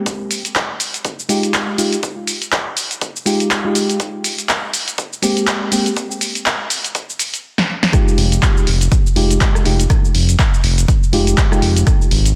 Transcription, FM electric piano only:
1.29 1.76 G#3 medium
1.29 1.76 D#4 medium
1.29 1.76 F4 medium
1.29 1.76 G4 loud
1.78 1.95 G#3 medium
1.78 1.96 D#4 medium
1.78 1.96 F4 medium
1.78 1.96 G4 medium
3.26 3.61 G#3 medium
3.26 3.61 D#4 medium
3.26 3.62 F4 medium
3.26 3.62 G4 loud
3.64 3.98 G#3 medium
3.64 3.98 D#4 medium
3.64 3.99 F4 medium
3.64 3.99 G4 loud
5.22 5.69 G#3 medium
5.22 5.69 A#3 medium
5.22 5.70 C4 medium
5.22 5.70 G4 loud
5.72 5.89 G#3 medium
5.72 5.89 A#3 medium
5.72 5.89 C4 medium
5.72 5.89 G4 medium
7.92 8.66 G#3 loud
7.92 8.67 D#4 medium
7.92 8.67 F4 medium
7.92 8.68 G4 loud
9.16 9.63 G#3 loud
9.16 9.63 D#4 medium
9.16 9.63 F4 medium
9.16 9.63 G4 loud
9.65 9.82 G#3 medium
9.65 9.82 D#4 medium
9.65 9.83 F4 medium
9.65 9.83 G4 loud
11.12 11.48 G#3 medium
11.12 11.48 D#4 medium
11.12 11.48 F4 medium
11.12 11.49 G4 loud
11.51 11.85 G#3 medium
11.51 11.85 D#4 medium
11.51 11.86 F4 medium
11.51 11.86 G4 loud

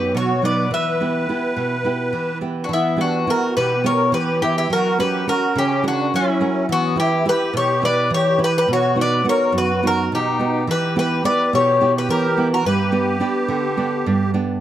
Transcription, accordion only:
0.00 0.13 G4 medium
0.15 0.41 F#4 medium
0.43 0.69 B4 medium
0.72 2.39 B4 medium
2.63 2.70 D4 soft
2.72 2.98 B3 medium
3.00 3.26 D4 medium
3.28 3.54 F#4 medium
3.56 3.83 G4 medium
3.85 4.11 A#4 medium
4.13 4.40 G4 medium
4.42 4.54 E4 medium
4.56 4.69 E4 medium
4.71 4.97 F#4 medium
5.01 5.26 G4 medium
5.29 5.54 F#4 medium
5.58 5.83 C#4 medium
5.85 6.11 D4 medium
6.15 6.66 C#4 medium
6.71 6.96 B3 medium
7.00 7.25 E4 medium
7.28 7.53 G4 medium
7.57 7.82 G4 medium
7.85 8.10 B4 medium
8.14 8.39 G4 loud
8.42 8.54 G4 medium
8.56 8.68 G4 medium
8.72 8.96 F#4 medium
9.00 9.24 B4 medium
9.28 9.53 A#4 medium
9.55 9.81 F#4 medium
9.83 10.09 F#4 medium
10.13 10.64 D#4 medium
10.71 10.95 G4 medium
10.99 11.23 G4 medium
11.26 11.51 B4 medium
11.54 11.92 G4 medium
11.96 12.08 G4 medium
12.10 12.49 G4 medium
12.53 12.65 F#4 medium
12.66 14.31 G4 medium

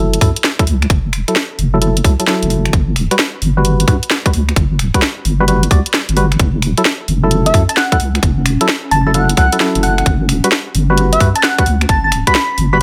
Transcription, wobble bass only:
0.00 0.18 F#1 medium
0.21 0.33 F#2 medium
0.67 0.86 C#2 medium
0.90 1.14 F#1 loud
1.13 1.24 E1 medium
1.59 2.01 F#1 medium
2.04 2.16 C#2 medium
2.43 2.70 F#1 loud
2.73 2.98 G1 loud
2.96 3.07 D1 loud
3.42 3.85 G1 medium
3.88 3.99 G2 medium
4.33 4.52 D2 medium
4.56 4.81 G1 medium
4.79 4.91 D1 medium
5.25 5.68 G1 medium
5.71 5.82 D2 medium
6.09 6.36 G1 loud
6.39 6.64 F#1 loud
6.62 6.74 E1 medium
7.08 7.51 F#1 medium
7.54 7.65 F#2 medium
8.00 8.19 C#2 medium
8.23 8.47 F#1 loud
8.46 8.57 E1 medium
8.91 9.34 F#1 medium
9.37 9.49 C#2 medium
9.75 10.03 F#1 loud
10.06 10.30 G1 loud
10.29 10.40 D1 medium
10.75 11.17 G1 medium
11.20 11.32 G2 medium
11.66 11.85 D2 medium
11.89 12.14 G1 medium
12.12 12.23 D1 medium
12.58 12.82 G1 medium

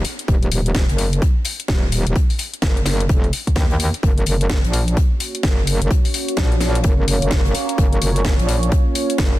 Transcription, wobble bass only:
0.28 0.50 D#1 loud
0.52 0.87 D#1 medium
0.89 1.20 F#1 loud
1.69 2.04 D#1 medium
2.07 2.14 D#1 loud
2.62 3.08 F#1 medium
3.09 3.31 F1 loud
3.56 3.92 D#2 medium
4.03 4.25 F#1 loud
4.27 4.62 F#1 loud
4.64 4.95 A#1 loud
5.44 5.79 F#1 medium
5.82 5.89 F#1 loud
6.38 6.83 A#1 medium
6.84 7.20 F#1 medium
7.22 7.53 F#1 loud
7.78 8.00 F#1 loud
8.02 8.37 F#1 loud
8.39 8.70 A#1 loud
9.19 9.39 F#1 loud

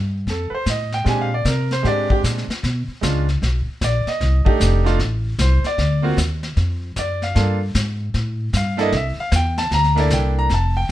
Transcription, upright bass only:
0.00 0.25 G2 medium
0.27 0.50 F2 medium
0.51 muted upright bass stroke soft
0.66 1.04 A2 medium
1.06 1.44 A#2 medium
1.45 1.83 C3 medium
1.84 2.22 G#2 medium
2.24 2.47 A#2 medium
2.48 muted upright bass stroke soft
2.63 2.87 B2 medium
2.88 muted upright bass stroke soft
3.03 3.41 C#2 medium
3.42 3.65 B1 medium
3.67 muted upright bass stroke soft
3.81 4.05 A#1 medium
4.06 muted upright bass stroke soft
4.21 4.44 C2 medium
4.60 4.98 F1 medium
4.99 5.37 A1 medium
5.38 5.62 C2 medium
5.63 muted upright bass stroke soft
5.78 6.16 D2 medium
6.17 6.55 D#2 medium
6.56 6.95 F2 medium
6.96 7.34 F#2 medium
7.35 7.73 G2 medium
7.75 8.13 G#2 medium
8.14 8.52 A2 medium
8.53 8.91 G2 medium
8.92 9.16 C2 medium
9.32 9.70 E2 medium
9.71 10.09 D2 medium
10.10 10.48 C2 medium
10.49 10.88 F1 medium

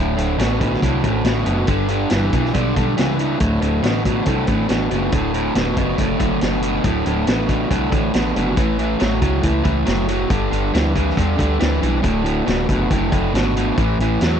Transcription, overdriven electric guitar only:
0.00 0.15 D2 medium
0.00 0.15 A2 medium
0.16 0.36 D2 medium
0.16 0.37 A2 medium
0.38 0.58 D2 medium
0.38 0.59 B2 medium
0.60 0.80 D2 medium
0.60 0.80 B2 medium
0.82 1.02 D2 medium
0.82 1.02 A2 medium
1.03 1.23 D2 medium
1.03 1.23 A2 medium
1.25 1.45 D2 medium
1.25 1.44 B2 medium
1.45 1.66 D2 medium
1.45 1.66 B2 medium
1.67 1.87 G2 medium
1.67 1.88 D3 medium
1.89 2.09 G2 medium
1.89 2.09 D3 medium
2.11 2.31 G2 medium
2.11 2.31 E3 medium
2.32 2.52 G2 medium
2.32 2.53 E3 medium
2.54 2.73 G2 medium
2.54 2.74 D3 medium
2.75 2.95 G2 medium
2.75 2.96 D3 medium
2.97 3.17 G2 medium
2.97 3.17 E3 loud
3.19 3.38 G2 medium
3.19 3.39 E3 medium
3.40 3.60 D2 medium
3.40 3.60 A2 medium
3.61 3.81 D2 medium
3.61 3.82 A2 medium
3.83 4.03 D2 medium
3.83 4.03 B2 medium
4.05 4.25 D2 medium
4.05 4.25 B2 medium
4.26 4.46 D2 medium
4.26 4.46 A2 medium
4.48 4.67 D2 medium
4.48 4.68 A2 medium
4.68 4.88 D2 medium
4.68 4.89 B2 medium
4.91 5.10 D2 medium
4.91 5.11 B2 medium
5.12 5.32 D2 medium
5.12 5.32 A2 medium
5.34 5.53 D2 medium
5.34 5.54 A2 medium
5.55 5.75 D2 medium
5.55 5.75 B2 medium
5.76 5.96 D2 medium
5.76 5.97 B2 medium
5.99 6.17 D2 medium
5.99 6.18 A2 medium
6.18 6.39 D2 medium
6.18 6.39 A2 medium
6.42 6.61 D2 medium
6.42 6.62 B2 medium
6.63 6.82 D2 medium
6.63 6.83 B2 medium
6.84 7.04 D2 medium
6.84 7.04 A2 medium
7.06 7.25 D2 medium
7.06 7.26 A2 medium
7.26 7.47 D2 medium
7.26 7.47 B2 medium
7.49 7.68 D2 medium
7.49 7.69 B2 medium
7.69 7.89 D2 medium
7.69 7.90 A2 medium
7.91 8.11 D2 medium
7.91 8.12 A2 medium
8.14 8.34 D2 medium
8.14 8.34 B2 medium
8.36 8.56 D2 medium
8.36 8.56 B2 medium
8.57 8.77 A2 medium
8.57 8.77 E3 medium
8.79 8.97 A2 medium
8.79 8.98 E3 medium
8.99 9.19 A2 medium
8.99 9.19 F#3 medium
9.21 9.41 A2 medium
9.21 9.41 F#3 medium
9.42 9.62 A2 medium
9.42 9.62 E3 medium
9.64 9.84 A2 medium
9.64 9.84 E3 medium
9.85 10.06 A2 medium
9.85 10.06 F#3 medium
10.08 10.28 A2 medium
10.08 10.28 F#3 medium
10.29 10.49 G2 medium
10.29 10.50 D3 medium
10.51 10.71 G2 medium
10.51 10.71 D3 medium
10.73 10.93 G2 medium
10.73 10.93 E3 medium
10.95 11.15 G2 medium
10.95 11.15 E3 medium
11.17 11.36 G2 medium
11.17 11.37 D3 medium
11.37 11.57 G2 medium
11.37 11.58 D3 medium
11.59 11.79 G2 medium
11.59 11.80 E3 loud
11.81 12.01 G2 medium
11.81 12.01 E3 medium
12.02 12.22 D2 medium
12.02 12.22 A2 medium
12.24 12.44 D2 medium
12.24 12.44 A2 medium
12.46 12.66 D2 medium
12.46 12.66 B2 medium
12.69 12.88 D2 medium
12.69 12.89 B2 medium
12.90 13.10 D2 medium
12.90 13.10 A2 loud
13.12 13.32 D2 medium
13.12 13.32 A2 medium
13.33 13.53 D2 medium
13.33 13.54 B2 medium
13.56 13.76 D2 medium
13.56 13.76 B2 medium
13.78 13.97 A2 medium
13.78 13.97 E3 medium
14.01 14.20 A2 medium
14.01 14.20 E3 medium
14.22 14.40 A2 medium
14.22 14.40 F#3 medium

